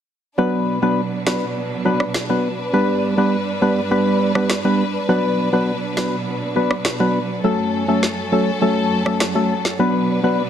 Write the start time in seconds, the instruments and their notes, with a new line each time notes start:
0.38 string section B2 F#3 D4 B4, synth stab F#3 B3 D4 B4
0.82 synth stab F#3 B3 D4 B4
1.26 synth stab F#3 B3 D4 B4, cross-stick, snare
1.85 synth stab F#3 B3 D4 B4
2.00 cross-stick
2.14 cross-stick, snare
2.29 synth stab F#3 B3 D4 B4
2.73 string section G2 G3, synth stab G3 B3 D4 B4
3.17 synth stab G3 B3 D4 B4
3.61 synth stab G3 B3 D4 B4
3.91 synth stab G3 B3 D4 B4
4.35 synth stab G3 B3 D4 B4, cross-stick
4.50 cross-stick, snare
4.64 synth stab G3 B3 D4 B4
5.09 string section B2 F#3, synth stab F#3 B3 D4 B4
5.53 synth stab F#3 B3 D4 B4
5.97 synth stab F#3 B3 D4 B4, cross-stick, snare
6.56 synth stab F#3 B3 D4 B4
6.71 cross-stick
6.85 cross-stick, snare
7.00 synth stab F#3 B3 D4 B4
7.44 string section F#2 C#4 A4, synth stab F#3 A3 C#4 A4
7.88 synth stab F#3 A3 C#4 A4
8.03 snare
8.32 synth stab F#3 A3 C#4 A4
8.61 synth stab F#3 A3 C#4 A4
9.05 synth stab F#3 A3 C#4 A4, cross-stick
9.20 cross-stick, snare
9.35 synth stab F#3 A3 C#4 A4
9.65 snare
9.79 string section B2 D4 B4, synth stab F#3 B3 D4 B4
10.23 synth stab F#3 B3 D4 B4